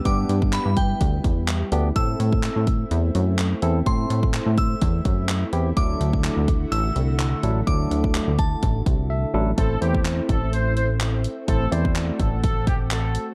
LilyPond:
<<
  \new Staff \with { instrumentName = "Synth bell" } { \time 4/4 \key a \dorian \tempo 4 = 126 d'''4 b''8 g''2 r8 | e'''1 | c'''4. e'''2 r8 | d'''2 e'''2 |
d'''4. a''2 r8 | r1 | r1 | }
  \new Staff \with { instrumentName = "Horn section" } { \time 4/4 \key a \dorian r1 | r1 | r1 | r1 |
r1 | a'8 g'8 r8 a'8 c''8 c''16 r4 r16 | a'8 c''8 r8 a'8 a'8 g'16 r16 a'8. r16 | }
  \new Staff \with { instrumentName = "Tine electric piano" } { \time 4/4 \key a \dorian << { r1 | r1 | r1 | r1 |
r2. e''4 | r1 | r1 | } \\ { <b d' g'>4. r2 <b d' g'>8 | <c' e' a'>4. r2 <c' e' a'>8 | <c' e' a'>4. r2 <c' e' g'>8 | <fis a d' e' a'>4. r2 <fis a d' e' a'>8 |
<fis a d' e' a'>4. r2 <fis a d' e' a'>8 | <a c' e' c''>8 <a c' e' c''>4. r2 | <a c' e' c''>8 <a c' e' d''>4. r2 | } >> }
  \new Staff \with { instrumentName = "Analog synth pad" } { \time 4/4 \key a \dorian << { e'1~ | e'1~ | e'1 | <d fis'>1~ |
<d fis'>1 | e'1 | fis'1 | } \\ { <g b>1 | <a c'>1~ | <a c'>1 | a1~ |
a1 | <a c'>1~ | <a c'>1 | } >> }
  \new Staff \with { instrumentName = "Analog synth bass" } { \clef bass \time 4/4 \key a \dorian g,8 g,8. g,8. d,8 e,4 d,8 | a,8 a,8. a,8. e,8 fis,4 e,8 | a,8 a,8. a,8. e,8 fis,4 e,8 | d,8 d,8. d,8. a,,8 c,4 a,,8 |
d,8 d,8. d,8. a,,8 c,4 a,,8 | a,,8 e,4 a,,2~ a,,8 | a,,8 e,4 a,,2~ a,,8 | }
  \new DrumStaff \with { instrumentName = "Drums" } \drummode { \time 4/4 <hh bd>8 hh16 bd16 <hc hh>8 <hh bd>8 <hh bd>8 <hh bd>8 <hc hh>8 hh8 | <hh bd>8 hh16 bd16 <hc hh>8 <hh bd>8 hh8 hh8 <hc hh>8 hh8 | <hh bd>8 hh16 bd16 <hc hh>8 <hh bd>8 <hh bd>8 <hh bd>8 <hc hh>8 hh8 | <hh bd>8 hh16 bd16 <hc hh>8 <hh bd>8 hh8 hh8 <hc hh>8 hh8 |
<hh bd>8 hh16 bd16 <hc hh>8 <hh bd>8 <hh bd>8 <hh bd>8 r4 | <hh bd>8 hh16 bd16 <hc hh>8 <hh bd>8 hh8 hh8 <hc hh>8 hh8 | <hh bd>8 hh16 bd16 <hc hh>8 <hh bd>8 <hh bd>8 <hh bd>8 <hc hh>8 hh8 | }
>>